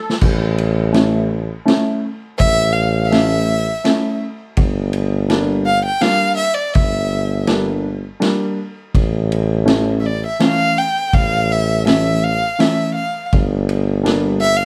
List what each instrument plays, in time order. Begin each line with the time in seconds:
Already playing: accordion A4
0.10 snare
0.21 tuba A1, kick, crash
0.58 ride
0.93 upright piano A3 C#4 E4, snare, ride
1.65 upright piano A3 C#4 E4, snare, ride
2.38 tuba A1, violin E5, kick, ride
2.72 violin F5
3.04 violin E5 F5
3.12 upright piano A3 C#4 E4, snare, ride
3.84 upright piano A3 C#4 E4, snare, ride
4.57 tuba G1, kick, ride
4.93 ride
5.29 upright piano G3 A#3 D4, snare, ride
5.66 violin F5
5.85 violin G5
6.01 upright piano G3 A#3 D4, violin F5, snare, ride
6.37 violin E5
6.54 violin D5
6.74 tuba G1, violin E5, kick, ride
7.47 upright piano G3 A#3 D4, snare, ride
8.20 upright piano G3 A#3 D4, snare, ride
8.94 tuba A1, kick, ride
9.32 ride
9.65 upright piano E3 A3 C#4, snare, ride
10.00 violin E5
10.06 violin D5
10.27 violin E5
10.39 upright piano E3 A3 C#4, snare, ride
10.44 violin F5
10.78 violin G5
11.13 tuba A1, violin F5, kick, ride
11.52 violin E5
11.85 upright piano E3 A3 C#4, violin E5, snare, ride
12.24 violin F5
12.58 upright piano E3 A3 C#4, violin E5, snare, ride
12.95 violin F5
13.32 tuba G1, kick, ride
13.69 ride
14.03 upright piano G3 A#3 D4, snare, ride
14.41 violin E5
14.56 violin F5